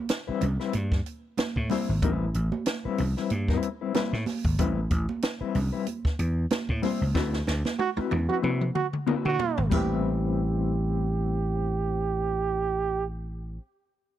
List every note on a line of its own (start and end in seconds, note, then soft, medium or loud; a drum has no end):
0.09 snare loud
0.09 closed hi-hat medium
0.09 muted conga soft
0.28 0.45 G3 medium
0.28 0.45 C4 medium
0.28 0.44 E4 medium
0.28 0.44 B4 medium
0.28 muted slap bass stroke soft
0.41 0.57 C2 medium
0.41 closed hi-hat medium
0.41 low conga medium
0.60 0.73 G3 medium
0.60 0.73 C4 medium
0.60 0.72 E4 medium
0.60 0.72 B4 medium
0.60 snare soft
0.73 1.00 G2 medium
0.73 closed hi-hat medium
0.73 muted conga soft
0.73 high conga medium
0.92 kick loud
0.92 snare soft
1.06 closed hi-hat medium
1.37 snare loud
1.37 closed hi-hat medium
1.37 high conga medium
1.56 1.68 A2 loud
1.56 kick medium
1.70 1.90 G3 medium
1.70 1.90 C4 medium
1.70 1.90 E4 loud
1.70 1.91 C5 loud
1.70 snare soft
1.70 open hi-hat medium
1.70 muted conga soft
1.70 high conga medium
1.89 2.00 G#1 medium
2.02 2.28 A1 loud
2.02 2.24 G3 medium
2.02 2.24 C4 medium
2.02 2.24 E4 medium
2.02 2.25 B4 medium
2.02 kick loud
2.02 closed hi-hat medium
2.02 low conga medium
2.34 2.49 A1 loud
2.34 closed hi-hat medium
2.52 high conga medium
2.66 snare loud
2.66 closed hi-hat medium
2.85 3.02 G3 medium
2.85 3.02 C4 medium
2.85 3.01 E4 medium
2.85 3.01 B4 medium
2.85 muted slap bass stroke soft
2.98 3.14 C2 medium
2.98 open hi-hat medium
2.98 muted conga soft
2.98 low conga medium
3.17 3.30 G3 medium
3.17 3.30 C4 medium
3.17 3.30 E4 medium
3.17 3.29 B4 medium
3.17 snare soft
3.30 3.57 G2 medium
3.30 closed hi-hat medium
3.30 muted conga soft
3.30 high conga medium
3.48 3.68 G3 medium
3.48 3.68 C4 medium
3.48 3.68 E4 medium
3.48 3.67 B4 medium
3.48 kick medium
3.48 snare soft
3.63 closed hi-hat medium
3.81 3.93 G3 medium
3.81 3.94 C4 medium
3.81 3.93 E4 medium
3.81 3.93 B4 medium
3.94 4.14 G3 medium
3.94 4.15 C4 medium
3.94 4.15 E4 loud
3.94 4.15 B4 medium
3.94 snare loud
3.94 closed hi-hat medium
3.94 muted conga soft
3.94 high conga medium
4.13 4.24 A2 loud
4.13 snare soft
4.26 snare soft
4.26 open hi-hat medium
4.26 muted conga soft
4.26 high conga medium
4.45 4.56 G#1 medium
4.45 kick loud
4.59 4.85 A1 loud
4.59 4.79 G3 medium
4.59 4.79 C4 medium
4.59 4.79 E4 medium
4.59 4.79 B4 medium
4.59 kick loud
4.59 closed hi-hat medium
4.59 low conga medium
4.91 5.05 A1 loud
4.91 kick loud
4.91 closed hi-hat medium
4.91 muted conga soft
5.09 high conga medium
5.22 snare loud
5.22 closed hi-hat medium
5.41 5.58 G3 medium
5.41 5.58 C4 medium
5.41 5.57 E4 medium
5.41 5.57 B4 medium
5.41 muted slap bass stroke soft
5.55 5.69 C2 loud
5.55 open hi-hat medium
5.55 muted conga soft
5.55 low conga medium
5.73 5.86 G3 medium
5.73 5.86 C4 medium
5.73 5.85 E4 medium
5.73 5.85 B4 medium
5.87 closed hi-hat medium
5.87 high conga medium
6.05 muted slap bass stroke medium
6.05 kick medium
6.05 snare soft
6.19 6.45 E2 medium
6.19 closed hi-hat medium
6.50 snare loud
6.50 closed hi-hat medium
6.50 high conga medium
6.69 6.81 A2 loud
6.69 kick medium
6.82 7.02 G3 medium
6.82 7.03 C4 medium
6.82 7.03 E4 medium
6.82 7.03 C5 medium
6.82 snare soft
6.82 open hi-hat medium
6.82 muted conga soft
6.82 high conga loud
7.01 7.13 C#2 medium
7.14 7.41 D2 loud
7.14 7.35 C4 medium
7.14 7.35 E4 medium
7.14 7.35 F#4 loud
7.14 7.35 B4 medium
7.14 kick loud
7.14 snare medium
7.14 muted conga soft
7.14 low conga medium
7.33 snare medium
7.47 7.62 D2 loud
7.47 snare medium
7.47 muted conga soft
7.65 snare medium
7.65 high conga medium
7.79 7.91 F#4 loud
7.79 high tom medium
7.79 muted conga soft
7.97 8.14 C4 medium
7.97 8.14 E4 medium
7.97 8.14 F#4 medium
7.97 8.13 B4 medium
7.97 muted slap bass stroke soft
7.97 high tom medium
8.11 8.26 E2 loud
8.11 high tom medium
8.11 low conga medium
8.29 8.41 C4 medium
8.29 8.42 E4 medium
8.29 8.38 F#4 loud
8.29 8.42 F#4 medium
8.29 8.42 B4 medium
8.29 mid tom medium
8.42 8.69 C3 medium
8.42 8.63 C4 medium
8.42 8.63 E4 medium
8.42 8.63 F#4 loud
8.42 8.63 B4 medium
8.42 mid tom medium
8.42 high conga medium
8.61 mid tom medium
8.75 8.87 F#4 medium
8.75 mid tom medium
8.75 muted conga soft
8.93 mid tom medium
9.07 9.28 C4 loud
9.07 9.29 E4 medium
9.07 9.29 F#4 loud
9.07 9.29 B4 loud
9.07 mid tom loud
9.07 muted conga soft
9.07 high conga medium
9.25 9.37 D3 loud
9.25 9.65 F#4 loud
9.25 floor tom medium
9.39 floor tom loud
9.39 high conga medium
9.58 9.69 G#1 medium
9.58 floor tom loud
9.70 13.57 A1 loud
9.70 13.59 G3 medium
9.70 13.61 C4 medium
9.70 13.63 E4 medium
9.70 13.04 G4 medium
9.70 kick loud
9.70 splash medium
9.70 high conga medium
9.75 13.64 B4 medium